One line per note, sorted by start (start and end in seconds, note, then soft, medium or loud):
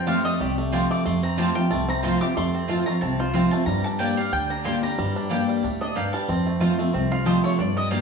0.00 0.19 F2 loud
0.00 0.37 F2 medium
0.00 1.15 C4 medium
0.00 0.44 F4 medium
0.07 0.38 F3 medium
0.07 0.38 A3 loud
0.07 0.17 C4 medium
0.07 0.39 C4 loud
0.07 0.17 F4 medium
0.07 0.39 F4 loud
0.07 0.40 G4 medium
0.07 0.17 C5 medium
0.07 0.24 F5 medium
0.07 0.17 A5 loud
0.25 0.58 A3 medium
0.25 0.39 D#5 loud
0.40 0.84 C2 medium
0.40 1.03 C3 loud
0.40 0.72 G4 medium
0.40 0.51 D5 loud
0.58 0.90 A3 medium
0.72 1.04 F3 medium
0.72 1.04 A3 loud
0.72 0.82 C4 loud
0.72 1.04 C4 loud
0.72 0.82 F4 loud
0.72 1.05 F4 loud
0.72 1.20 G4 medium
0.72 0.82 C5 loud
0.72 0.83 A5 loud
0.91 1.05 A3 medium
0.91 1.05 D6 loud
1.05 1.68 F2 loud
1.05 1.50 F2 loud
1.05 1.70 A3 medium
1.05 1.23 C6 medium
1.23 1.88 C4 medium
1.23 1.38 A#5 loud
1.37 1.55 F3 medium
1.37 1.55 A3 medium
1.37 1.47 C4 medium
1.37 1.55 C4 loud
1.37 1.48 F4 medium
1.37 1.54 F4 loud
1.37 1.85 G4 medium
1.37 1.48 C5 loud
1.37 1.48 A5 loud
1.37 1.56 A5 medium
1.55 1.71 C4 medium
1.55 1.70 F4 medium
1.55 2.00 F4 medium
1.55 1.70 G5 loud
1.71 2.15 C2 medium
1.71 2.33 C3 medium
1.71 2.18 A3 medium
1.71 1.88 A5 medium
1.89 2.33 C4 medium
1.89 2.04 A#5 loud
2.02 2.21 F3 medium
2.02 2.21 A3 loud
2.02 2.13 C4 loud
2.02 2.21 C4 medium
2.02 2.13 F4 loud
2.02 2.51 F4 medium
2.02 2.20 F4 loud
2.02 2.13 C5 loud
2.02 2.13 A5 loud
2.02 2.21 C6 medium
2.21 2.37 C4 medium
2.21 2.36 F4 medium
2.21 2.66 G4 medium
2.21 2.36 D6 loud
2.36 2.99 F2 medium
2.36 2.81 F2 medium
2.36 2.83 A3 medium
2.36 2.84 C6 medium
2.55 2.99 C4 medium
2.68 2.86 F3 medium
2.68 2.86 A3 medium
2.68 2.78 C4 medium
2.68 2.87 C4 loud
2.68 2.78 F4 medium
2.68 3.16 F4 medium
2.68 2.85 F4 loud
2.68 2.79 C5 medium
2.68 2.79 A5 loud
2.86 3.32 A3 medium
2.86 3.02 C4 soft
2.86 3.01 F4 medium
2.86 3.01 A#5 loud
3.01 3.46 C2 medium
3.01 3.64 C3 medium
3.01 3.34 C4 medium
3.01 3.19 A5 medium
3.19 3.64 F4 medium
3.19 3.33 C5 medium
3.33 3.51 F3 loud
3.33 3.51 A3 loud
3.33 3.44 C4 medium
3.33 3.52 C4 loud
3.33 3.67 C4 medium
3.33 3.44 F4 loud
3.33 3.50 F4 loud
3.33 3.44 C5 medium
3.33 3.51 F5 medium
3.33 3.44 A5 loud
3.51 3.68 A3 medium
3.51 3.67 C4 medium
3.51 3.66 F4 medium
3.51 3.66 A5 loud
3.66 4.29 G2 medium
3.66 4.11 G2 loud
3.66 4.18 G3 medium
3.66 3.84 A#5 loud
3.84 4.00 D4 medium
3.84 3.99 A5 loud
3.98 4.16 G3 loud
3.98 4.09 A#3 medium
3.98 4.17 A#3 loud
3.98 4.17 D4 loud
3.98 4.31 D4 medium
3.98 4.09 G4 medium
3.98 4.16 G4 medium
3.98 4.09 D5 medium
3.98 4.17 G5 medium
3.98 4.09 G5 loud
4.17 4.62 G3 medium
4.17 4.33 D4 medium
4.17 4.32 G4 medium
4.17 4.32 F5 loud
4.32 4.77 D2 medium
4.32 4.95 D3 medium
4.32 4.49 D4 medium
4.32 4.50 G5 loud
4.50 4.65 D4 medium
4.50 4.65 A#5 loud
4.64 4.82 G3 medium
4.64 4.74 A#3 medium
4.64 4.83 A#3 loud
4.64 5.12 D4 medium
4.64 4.83 D4 loud
4.64 4.75 G4 loud
4.64 4.81 G4 loud
4.64 4.75 D5 medium
4.64 4.75 G5 loud
4.64 4.82 C6 loud
4.82 4.97 G3 medium
4.82 4.98 D4 medium
4.82 4.97 G4 medium
4.82 5.13 A#5 loud
4.98 5.60 G2 medium
4.98 5.42 G2 medium
4.98 5.45 G3 medium
5.16 5.30 D4 medium
5.29 5.61 G3 medium
5.29 5.40 A#3 medium
5.29 5.62 A#3 loud
5.29 5.62 D4 loud
5.29 5.63 D4 medium
5.29 5.40 G4 medium
5.29 5.62 G4 loud
5.29 5.40 D5 loud
5.29 5.40 G5 loud
5.49 5.93 G3 medium
5.62 6.08 D2 medium
5.62 5.94 A2 medium
5.62 5.80 D4 medium
5.81 5.95 D4 medium
5.81 5.95 D#5 medium
5.95 6.27 G2 loud
5.95 6.05 A#3 loud
5.95 6.29 D4 medium
5.95 6.05 G4 loud
5.95 6.05 D5 medium
5.95 6.13 F5 medium
5.95 6.06 G5 loud
6.13 6.29 G3 medium
6.13 6.90 A5 loud
6.29 6.91 F2 loud
6.29 6.73 F2 loud
6.29 6.76 C4 medium
6.46 6.78 A3 medium
6.60 6.78 F3 loud
6.60 6.78 A3 medium
6.60 6.70 C4 medium
6.60 6.78 C4 loud
6.60 6.71 F4 loud
6.60 7.08 F4 medium
6.60 6.76 F4 loud
6.60 6.71 C5 loud
6.60 6.71 A5 medium
6.78 7.24 A3 medium
6.78 6.94 C4 soft
6.78 6.93 F4 medium
6.93 7.38 C2 medium
6.93 7.56 C3 medium
6.93 7.41 C4 medium
7.12 7.56 F4 medium
7.12 7.26 F5 loud
7.25 7.57 F3 loud
7.25 7.58 A3 loud
7.25 7.36 C4 loud
7.25 7.58 C4 loud
7.25 7.36 F4 medium
7.25 7.58 F4 loud
7.25 7.59 G4 medium
7.25 7.36 C5 loud
7.25 7.43 D#5 medium
7.25 7.36 A5 loud
7.44 7.59 A3 medium
7.44 7.59 C#5 loud
7.58 8.01 G2 loud
7.58 8.01 G2 medium
7.58 7.90 D4 medium
7.58 7.77 D5 medium
7.77 8.01 G3 medium
7.77 7.91 D#5 loud
7.90 8.01 G3 medium
7.90 8.01 A#3 medium
7.90 8.01 D4 medium
7.90 8.01 D4 loud
7.90 8.01 G4 medium
7.90 8.01 G4 loud
7.90 8.01 D5 loud
7.90 8.01 F5 loud
7.90 8.01 G5 loud